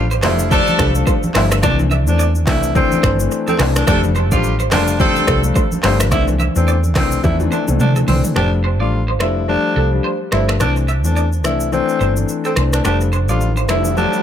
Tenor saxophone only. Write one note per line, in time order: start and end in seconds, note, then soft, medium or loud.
0.24 0.47 E4 medium
0.52 0.93 D4 loud
1.36 1.49 E4 medium
1.64 1.77 D4 loud
2.08 2.32 D4 medium
2.48 2.72 E4 medium
2.76 3.17 C4 loud
3.48 3.58 C4 medium
3.76 3.86 D4 medium
3.88 4.01 D4 loud
4.32 4.56 F4 medium
4.72 4.96 D4 medium
5.00 5.41 C4 loud
5.84 5.98 C4 medium
6.12 6.26 E4 loud
6.57 6.80 C4 medium
6.97 7.20 C4 medium
7.24 7.38 E4 medium
7.52 7.66 D4 medium
7.80 7.94 D4 medium
8.08 8.22 C4 medium
8.36 8.50 D4 loud
8.81 9.04 F4 medium
9.21 9.44 E4 medium
9.49 9.90 D4 loud
10.33 10.46 E4 medium
10.61 10.74 D4 loud
11.05 11.29 D4 medium
11.45 11.69 E4 medium
11.73 12.14 C4 medium
12.46 12.55 C4 medium
12.74 12.83 D4 medium
12.85 12.99 D4 loud
13.29 13.53 F4 medium
13.69 13.93 E4 medium
13.97 14.23 D4 loud